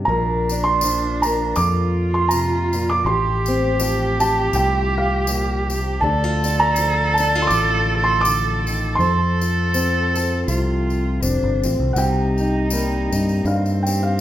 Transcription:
0.05 fingered electric bass A#1, steel-string acoustic guitar A#2 A#4, cello D4, felt piano A#5
0.49 steel-string acoustic guitar D4, tambourine
0.64 felt piano C6
0.81 steel-string acoustic guitar F3 F4, tambourine
1.22 felt piano A#5, tambourine
1.26 steel-string acoustic guitar A#4
1.56 fingered electric bass F2, steel-string acoustic guitar A#2, cello F4, felt piano D6, tambourine
2.14 felt piano C6
2.29 steel-string acoustic guitar C3, felt piano A#5, tambourine
2.73 steel-string acoustic guitar A#2, tambourine
2.89 felt piano D6
3.05 fingered electric bass A1, steel-string acoustic guitar A2 G4, cello G4, felt piano C6
3.46 steel-string acoustic guitar C4, tambourine
3.79 steel-string acoustic guitar F3 F4, tambourine
4.20 steel-string acoustic guitar G4, felt piano A5, tambourine
4.53 fingered electric bass C2, steel-string acoustic guitar A2, felt piano G5, tambourine
4.98 felt piano F5
5.27 steel-string acoustic guitar A#2, tambourine
5.70 steel-string acoustic guitar C3, tambourine
6.01 fingered electric bass D2, steel-string acoustic guitar D3 D4, cello A4, felt piano A5
6.24 steel-string acoustic guitar F4
6.44 steel-string acoustic guitar D4, tambourine
6.60 felt piano A#5
6.76 steel-string acoustic guitar F3 F4, tambourine
7.14 felt piano A5, tambourine
7.19 steel-string acoustic guitar D4
7.35 steel-string acoustic guitar F4
7.42 felt piano C6
7.47 fingered electric bass A1, felt piano D6, tambourine
7.52 steel-string acoustic guitar A2
8.04 felt piano C6
8.21 felt piano D6
8.25 steel-string acoustic guitar D3, tambourine
8.67 steel-string acoustic guitar D#3, tambourine
8.95 fingered electric bass F2, steel-string acoustic guitar F3, felt piano C6
9.00 steel-string acoustic guitar A4, cello A4, tambourine
9.41 steel-string acoustic guitar F4, tambourine
9.74 steel-string acoustic guitar C4 A4, tambourine
10.15 steel-string acoustic guitar A4, tambourine
10.47 fingered electric bass C2, steel-string acoustic guitar C3, cello F4, tambourine
10.90 tambourine
11.22 fingered electric bass F1, steel-string acoustic guitar C4, cello D4, tambourine
11.43 fingered electric bass G1
11.63 fingered electric bass A1, cello C4, steel-string acoustic guitar F4, tambourine
11.80 fingered electric bass C2
11.93 fingered electric bass C2, steel-string acoustic guitar C3, felt piano F#5, tambourine
11.97 cello D#4, steel-string acoustic guitar G4, felt piano G5
12.38 steel-string acoustic guitar D#4, tambourine
12.70 steel-string acoustic guitar G3 A#3, tambourine
13.12 fingered electric bass G2, steel-string acoustic guitar D#4, tambourine
13.29 tambourine
13.45 fingered electric bass G2, steel-string acoustic guitar G2, cello C4, felt piano F5, tambourine
13.66 tambourine
13.83 felt piano G5
13.87 steel-string acoustic guitar G4, tambourine
14.03 felt piano F5

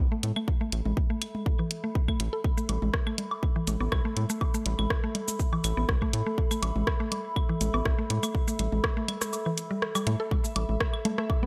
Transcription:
Already playing: ambient pad A4 E5 B5
0.12 synth arpeggio sound A3
0.23 analog synth bass A2, closed hi-hat, high tom
0.36 synth arpeggio sound A3, claves
0.48 kick
0.61 synth arpeggio sound A3
0.72 analog synth bass A1, closed hi-hat
0.85 analog synth bass A1, high tom
0.97 kick
1.10 synth arpeggio sound A3
1.22 closed hi-hat, claves
1.35 high tom
1.46 kick
1.59 synth arpeggio sound E3
1.71 closed hi-hat
1.84 synth arpeggio sound A3
1.95 kick
2.08 synth arpeggio sound A3, kick, claves
2.20 analog synth bass A1, closed hi-hat
2.33 synth arpeggio sound A4
2.44 kick
2.58 synth arpeggio sound A3, cabasa
2.69 analog synth bass A1, closed hi-hat, low conga, high woodblock
2.82 analog synth bass A1, high tom
2.94 kick, cross-stick
3.07 synth arpeggio sound A3, claves
3.18 closed hi-hat, low conga
3.31 high woodblock
3.43 kick
3.56 synth arpeggio sound E3
3.67 analog synth bass A1, closed hi-hat, high tom, cabasa
3.80 analog synth bass A1, synth arpeggio sound B3, high woodblock
3.92 analog synth bass C2, kick, cross-stick, claves
4.05 synth arpeggio sound A3
4.17 analog synth bass A2, closed hi-hat, high tom
4.30 synth arpeggio sound A3, cabasa
4.41 kick, high woodblock
4.54 synth arpeggio sound A3, cabasa
4.66 analog synth bass A1, closed hi-hat, low conga
4.79 analog synth bass A1, high tom, claves
4.90 kick, cross-stick, high woodblock
5.04 synth arpeggio sound A3
5.15 closed hi-hat, low conga
5.28 high tom, cabasa
5.40 kick, cabasa
5.53 synth arpeggio sound E3, high woodblock
5.64 analog synth bass A1, closed hi-hat, cabasa, claves
5.77 analog synth bass A1, synth arpeggio sound B3
5.89 analog synth bass C2, kick, cross-stick
6.02 synth arpeggio sound A3, kick, high woodblock
6.13 analog synth bass A2, closed hi-hat
6.26 synth arpeggio sound A3
6.38 kick
6.51 synth arpeggio sound A3, cabasa, claves
6.62 analog synth bass A1, closed hi-hat, low conga, high woodblock
6.76 analog synth bass A1, high tom
6.87 kick, cross-stick
7.00 synth arpeggio sound A3
7.12 closed hi-hat, low conga, high woodblock
7.36 kick, claves
7.49 synth arpeggio sound E3
7.61 analog synth bass A1, closed hi-hat, high tom, cabasa
7.74 analog synth bass A1, synth arpeggio sound B3, high woodblock
7.85 analog synth bass C2, kick, cross-stick
7.98 synth arpeggio sound A3
8.10 analog synth bass A2, closed hi-hat, high tom
8.23 synth arpeggio sound A3, cabasa, claves, high woodblock
8.35 kick
8.48 synth arpeggio sound A3, cabasa
8.59 analog synth bass A1, closed hi-hat, low conga
8.72 analog synth bass A1, high tom
8.84 kick, cross-stick, high woodblock
8.97 synth arpeggio sound A3
9.08 closed hi-hat, low conga, claves
9.21 cross-stick, high tom, cabasa
9.33 cabasa, high woodblock
9.46 synth arpeggio sound E3
9.58 closed hi-hat, cabasa
9.71 synth arpeggio sound G3
9.82 cross-stick
9.95 synth arpeggio sound G3, cabasa, claves, high woodblock
10.07 analog synth bass A2, synth arpeggio sound A3, closed hi-hat
10.20 synth arpeggio sound A4
10.31 synth texture E5, kick, high tom
10.44 cabasa
10.56 analog synth bass A1, closed hi-hat, low conga, high woodblock
10.69 analog synth bass A1, high tom
10.80 kick, cross-stick
10.94 claves
11.05 synth arpeggio sound A3, closed hi-hat, high tom, low conga
11.18 synth arpeggio sound A3, cross-stick
11.30 kick, high woodblock
11.43 synth arpeggio sound B3, high tom

